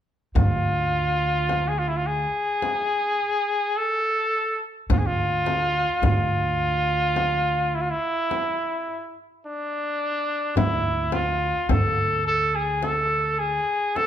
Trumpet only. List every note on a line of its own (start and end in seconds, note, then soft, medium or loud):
0.37 1.70 F4 medium
1.68 1.80 G#4 medium
1.79 1.90 F4 medium
1.88 1.98 E4 medium
1.97 2.08 F4 medium
2.07 3.78 G#4 medium
3.77 4.63 A4 medium
4.91 5.00 F4 medium
4.98 5.08 G#4 medium
5.07 6.05 F4 medium
6.06 7.76 F4 medium
7.75 7.83 E4 medium
7.81 7.92 F4 medium
7.90 9.18 E4 medium
9.46 10.54 D4 medium
10.58 11.15 E4 medium
11.13 11.72 F4 medium
11.70 12.26 A4 medium
12.27 12.57 A4 medium
12.56 12.86 G#4 medium
12.84 13.40 A4 medium
13.39 13.98 G#4 medium
13.96 14.07 A4 medium